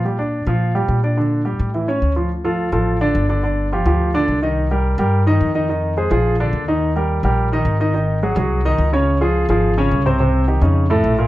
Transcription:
<<
  \new Staff \with { instrumentName = "Grand piano" } { \time 4/4 \key bes \major \tempo 4 = 213 <g g'>8 <d' d''>4 <f f'>4 <g g'>4 <d' d''>8 | <d d'>4 <g g'>4 <e e'>8 <cis' cis''>4 <f f'>8 | r8 <f f' a'>4 <f f' a'>4 <d d' d''>4 <d d' d''>8 | <d d' d''>4 <f f' g'>8 <f f' g'>4 <d d' d''>4 <ees ees' ees''>8~ |
<ees ees' ees''>8 <g g' bes'>4 <g g' bes'>4 <ees ees' ees''>4 <ees ees' ees''>8 | <ees ees' ees''>4 <aes aes' c''>8 <f f' aes'>4 <d d' d''>4 <ees ees' ees''>8~ | <ees ees' ees''>8 <g g' bes'>4 <g g' bes'>4 <ees ees' ees''>4 <ees ees' ees''>8 | <ees ees' ees''>4 <ges ges' aes'>8 <ges ges' aes'>4 <ees ees' ees''>4 <des des' des''>8~ |
<des des' des''>8 <f f' aes'>4 <f f' aes'>4 <des des' des''>4 <c c' c''>8 | <c c' c''>4 <ees ees' g'>8 <des des' ees'>4 <a, a a'>4 <bes, bes bes'>8 | }
  \new Staff \with { instrumentName = "Upright bass" } { \clef bass \time 4/4 \key bes \major bes,4. bes,4. bes,4~ | bes,4. a,4. d,4~ | d,4. a,,4. g,,4~ | g,,4. d,4. c,4~ |
c,4. g,4. f,4~ | f,4. bes,,4. ees,4~ | ees,4. bes,,4. aes,,4~ | aes,,4. c,4. des,4~ |
des,4. aes,,4. c,4~ | c,4. f,4. bes,,4 | }
>>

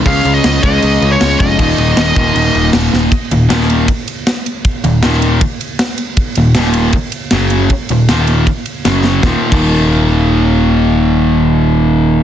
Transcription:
<<
  \new Staff \with { instrumentName = "Lead electric guitar" } { \time 4/4 \key des \lydian \tempo 4 = 157 f''8. ees''8. ees''4~ ees''16 des''8. ees''8~ | ees''2. r4 | r1 | r1 |
r1 | r1 | r1 | r1 | }
  \new Staff \with { instrumentName = "Overdriven electric guitar" } { \clef bass \time 4/4 \key des \lydian <des aes des'>4. <des aes des'>2~ <des aes des'>8 | <ees, bes, ees>4. <ees, bes, ees>2~ <ees, bes, ees>8 | r8 <ees, bes,>8 <ees, bes, ees>4 r2 | r8 <ees, bes,>8 <ees, bes, ees>4 r2 |
r8 <ees, bes,>8 <ees, bes, ees>4 r4 <ges, des ges>4 | r8 <ees, bes,>8 <ees, bes, ees>4 r4 <ges, des ges>4 | <ees, bes, ees>16 r8 <ees, bes, ees>2.~ <ees, bes, ees>16~ | <ees, bes, ees>1 | }
  \new Staff \with { instrumentName = "Picked electric bass" } { \clef bass \time 4/4 \key des \lydian des,8 des,8 des,8 des,8 des,8 des,8 des,8 f,,8 | ees,,8 ees,,8 ees,,8 ees,,8 ees,,8 ees,,8 ees,,8 ees,,8 | r8 ees,,8 ees,,4 r2 | r8 ees,,8 ees,,4 r2 |
r8 ees,,8 ees,,4 r4 ges,,4 | r8 ees,,8 ees,,4 r4 ges,,4 | ees,,16 r8 ees,,2.~ ees,,16~ | ees,,1 | }
  \new DrumStaff \with { instrumentName = "Drums" } \drummode { \time 4/4 <cymc bd>8 cymc8 <cymc sn>8 <cymc bd>8 cymc8 cymc8 <cymc sn>8 <cymc bd>8 | <cymc bd>8 cymc8 <cymc sn>8 <cymc bd>8 cymc8 cymc8 <cymc sn>8 sn8 | <bd cymr>8 cymr8 <cymr sn>16 sn16 cymr8 <bd cymr>8 cymr8 <cymr sn>8 cymr8 | <bd cymr>8 cymr8 <cymr sn>16 sn16 cymr8 <bd cymr>8 cymr8 <cymr sn>8 cymr8 |
<bd cymr>8 cymr8 <cymr sn>16 sn16 cymr8 <bd cymr>8 cymr8 <cymr sn>8 cymr8 | <bd cymr>8 cymr8 <cymr sn>8 cymr8 <bd cymr>8 cymr8 <cymr sn>8 sn8 | <bd sn>8. <cymc bd>16 r4 r4 r4 | r4 r4 r4 r4 | }
>>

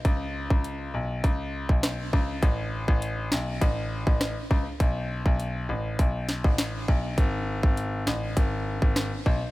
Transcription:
<<
  \new Staff \with { instrumentName = "Grand piano" } { \clef bass \time 4/4 \key a \lydian \tempo 4 = 101 cis,8. cis,8. b,,8 cis,8. b,,8. cis,8 | a,,8. a,,8. b,,8 a,,8. a,,8 r16 cis,16 r16 | b,,8. b,,8. a,,8 b,,8. a,,8. b,,8 | gis,,8. gis,,8. a,,8 gis,,8. gis,,8 r16 b,,16 r16 | }
  \new DrumStaff \with { instrumentName = "Drums" } \drummode { \time 4/4 <hh bd>8. bd16 hh4 <hh bd>8. bd16 <hh ss sn>8 bd8 | <hh bd>8. bd16 hh8 sn8 <hh bd>8. bd16 <hh ss sn>8 bd8 | <hh bd>8. bd16 hh4 <hh bd>8 sn16 bd16 <hh sn>8 bd8 | <hh bd>8. bd16 hh8 sn8 <hh bd>8. bd16 <hh ss sn>8 bd8 | }
>>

